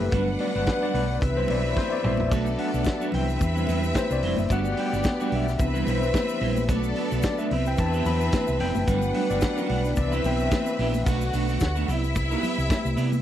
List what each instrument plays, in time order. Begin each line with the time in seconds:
Already playing: french horn section C3 G3 E4 B4, tine electric piano E3 B3 D4 G4 A4 B4
0.00 fingered electric bass F#1, muted clean electric guitar stroke
0.11 fingered electric bass G1, french horn section D3 F#3 F#4, tine electric piano F#3 A3 B3, clean electric guitar G3 D4 F#4 B4, string section D4 B4 F#5, kick, closed hi-hat, muted conga
0.39 clean electric guitar G3 D4 F#4 B4, tine electric piano D5, open hi-hat
0.55 fingered electric bass G1, clean electric guitar G3 D4 F#4 D5, tine electric piano B4
0.67 tine electric piano B4, muted clean electric guitar stroke, kick, snare, closed hi-hat, high conga
0.82 clean electric guitar G3 D4 F#4 B4, tine electric piano D5
0.94 fingered electric bass B1, clean electric guitar G3 D4 F#4 D5, tine electric piano B4, open hi-hat, low conga
1.21 fingered electric bass C2, french horn section C3 E4, tine electric piano E3 B3 D4, string section C4 B4 E5, muted clean electric guitar stroke, kick, closed hi-hat, muted conga
1.37 clean electric guitar G3 C4 E4 B4, tine electric piano C5
1.48 fingered electric bass B1, clean electric guitar G3 C4 E4 B4, tine electric piano D5, open hi-hat, muted conga, low conga
1.64 muted clean electric guitar stroke
1.75 tine electric piano C5, kick, snare, high conga
1.90 tine electric piano D5 E5, muted clean electric guitar stroke
2.03 fingered electric bass A#1, clean electric guitar G3 C4 E4 C5, tine electric piano E5, mid tom
2.17 muted clean electric guitar stroke, floor tom, high conga
2.29 fingered electric bass B1, french horn section D3 A3 F#4, tine electric piano F#3 A3 D4, clean electric guitar A3 D4 F#4 B4, string section B3 A4, kick, crash, muted conga, shaker
2.34 string section D5
2.46 shaker
2.57 clean electric guitar A3 D4 F#4 B4, tine electric piano F#5, open hi-hat
2.73 fingered electric bass B1, clean electric guitar A3 D4 F#4 D5, shaker
2.85 muted clean electric guitar stroke, kick, snare, closed hi-hat, high conga, shaker
3.01 clean electric guitar A3 D4 F#4 B4, shaker
3.12 fingered electric bass C2, french horn section C3 G3 E4, tine electric piano E3 B3 D4 G5, clean electric guitar G3 C4 E4 C5, string section C4 B4 E5, open hi-hat, low conga
3.29 muted clean electric guitar stroke, shaker
3.39 fingered electric bass E2, muted clean electric guitar stroke, kick, closed hi-hat, muted conga, shaker
3.55 clean electric guitar G3 C4 E4 B4, shaker
3.67 fingered electric bass E2, clean electric guitar G3 C4 E4 B4, open hi-hat, muted conga, low conga, shaker
3.83 muted clean electric guitar stroke, shaker
3.94 tine electric piano C5, kick, snare, closed hi-hat, high conga, shaker
4.10 fingered electric bass C2, tine electric piano D5, muted clean electric guitar stroke, shaker
4.23 fingered electric bass F1, clean electric guitar G3 C4 E4 C5, open hi-hat
4.36 fingered electric bass F#1, tine electric piano E5, muted clean electric guitar stroke, high conga, shaker
4.49 fingered electric bass G1, french horn section D3 D4, clean electric guitar G3 D4 F#4 B4, tine electric piano A3 B3 F#4 F#5, string section B3 G4 D5, kick, closed hi-hat, muted conga, shaker
4.65 shaker
4.72 tine electric piano F#5
4.77 clean electric guitar G3 D4 F#4 B4, tine electric piano G5, open hi-hat
4.92 fingered electric bass G1, clean electric guitar G3 D4 F#4 D5, shaker
5.04 muted clean electric guitar stroke, kick, snare, closed hi-hat, high conga, shaker
5.20 clean electric guitar G3 D4 F#4 B4, shaker
5.32 fingered electric bass B1, clean electric guitar G3 D4 F#4 D5, tine electric piano E5, open hi-hat, low conga
5.47 muted clean electric guitar stroke, snare, shaker
5.59 fingered electric bass C2, french horn section C3 G3 E4 B4, tine electric piano E3 B3 D4, string section C4 B4 E5, muted clean electric guitar stroke, kick, closed hi-hat, muted conga, shaker
5.74 clean electric guitar G3 C4 E4 B4, shaker
5.86 fingered electric bass B1, clean electric guitar G3 C4 E4 B4, tine electric piano C5, open hi-hat, muted conga, low conga, shaker
6.02 tine electric piano B4, muted clean electric guitar stroke, shaker
6.13 kick, snare, closed hi-hat, high conga, shaker
6.29 muted clean electric guitar stroke, shaker
6.40 fingered electric bass A#1, clean electric guitar G3 C4 E4 C5, open hi-hat
6.57 muted clean electric guitar stroke, high conga, shaker
6.68 fingered electric bass B1, french horn section D3 A3 F#4 B4, tine electric piano F#3 A3 D4, clean electric guitar A3 D4 F#4 B4, string section B3 A4 D5, kick, closed hi-hat, shaker
6.84 shaker
6.96 clean electric guitar A3 D4 F#4 B4, open hi-hat
7.11 fingered electric bass B1, clean electric guitar A3 D4 F#4 D5, shaker
7.23 tine electric piano D5, muted clean electric guitar stroke, kick, snare, closed hi-hat, high conga, shaker
7.38 clean electric guitar A3 D4 F#4 B4, tine electric piano E5, shaker
7.51 fingered electric bass C2, french horn section C3 E3 E4, clean electric guitar B3 E4 G4 D5, string section C4 B4 E5, open hi-hat, low conga
7.66 tine electric piano G5, muted clean electric guitar stroke, shaker
7.77 fingered electric bass E2, tine electric piano E3 B3 D4 A5, muted clean electric guitar stroke, kick, closed hi-hat, muted conga, shaker
7.93 clean electric guitar B3 E4 G4 B4, shaker
8.05 fingered electric bass E2, clean electric guitar B3 E4 G4 B4, tine electric piano B5, open hi-hat, muted conga, low conga, shaker
8.21 muted clean electric guitar stroke, shaker
8.32 kick, snare, closed hi-hat, high conga, shaker
8.47 fingered electric bass C2, muted clean electric guitar stroke, shaker
8.59 fingered electric bass F1, clean electric guitar B3 E4 G4 D5, tine electric piano G5, open hi-hat
8.75 fingered electric bass F#1, muted clean electric guitar stroke, high conga, shaker
8.86 fingered electric bass G1, french horn section D3 F#4, tine electric piano F#3 A3 B3, clean electric guitar G3 D4 F#4 B4, string section D4 B4 F#5, kick, closed hi-hat, muted conga, shaker
9.02 shaker
9.14 clean electric guitar G3 D4 F#4 B4, tine electric piano F#5, open hi-hat
9.30 fingered electric bass G1, clean electric guitar G3 D4 F#4 D5, tine electric piano D5, shaker
9.41 muted clean electric guitar stroke, kick, snare, closed hi-hat, high conga, shaker
9.57 clean electric guitar G3 D4 F#4 B4, shaker
9.69 fingered electric bass B1, clean electric guitar G3 D4 F#4 D5, open hi-hat, low conga
9.85 muted clean electric guitar stroke, snare, shaker
9.95 fingered electric bass C2, tine electric piano E3 B3 D4 D5, french horn section E4 B4, string section E5, muted clean electric guitar stroke, kick, closed hi-hat, muted conga, shaker
9.99 french horn section C3, string section C4 B4
10.12 clean electric guitar B3 E4 G4 B4, tine electric piano E5, shaker
10.24 fingered electric bass B1, clean electric guitar B3 E4 G4 B4, tine electric piano G5, open hi-hat, muted conga, low conga, shaker
10.40 tine electric piano E5, muted clean electric guitar stroke, shaker
10.51 kick, snare, closed hi-hat, high conga, shaker
10.66 tine electric piano B4, muted clean electric guitar stroke, shaker
10.79 fingered electric bass A#1, clean electric guitar B3 E4 G4 D5, open hi-hat
10.94 muted clean electric guitar stroke, high conga, shaker
11.06 fingered electric bass B1, french horn section D3 A3 B3 F#4, clean electric guitar A3 D4 F#4 B4, string section F#4 F#5, kick, crash, muted conga, shaker
11.21 shaker
11.33 fingered electric bass B1, clean electric guitar A3 D4 F#4 B4, open hi-hat, shaker
11.49 clean electric guitar A3 D4 F#4 D5, shaker
11.60 fingered electric bass D2, muted clean electric guitar stroke, kick, snare, closed hi-hat, high conga, shaker
11.75 clean electric guitar A3 D4 F#4 B4, shaker
11.88 fingered electric bass C2, french horn section C3 G3 B3 E4, clean electric guitar B3 E4 G4 D5, string section E4 E5, open hi-hat, low conga, shaker
12.04 muted clean electric guitar stroke, shaker
12.15 muted clean electric guitar stroke, kick, closed hi-hat, muted conga, shaker
12.31 clean electric guitar B3 E4 G4 B4, shaker
12.43 clean electric guitar B3 E4 G4 B4, open hi-hat, muted conga, low conga, shaker
12.58 fingered electric bass C2, muted clean electric guitar stroke, shaker
12.70 kick, snare, closed hi-hat, high conga, shaker
12.85 fingered electric bass C2, muted clean electric guitar stroke, high conga, shaker
12.97 fingered electric bass C3, clean electric guitar B3 E4 G4 D5, open hi-hat, shaker
13.12 muted clean electric guitar stroke, high conga, shaker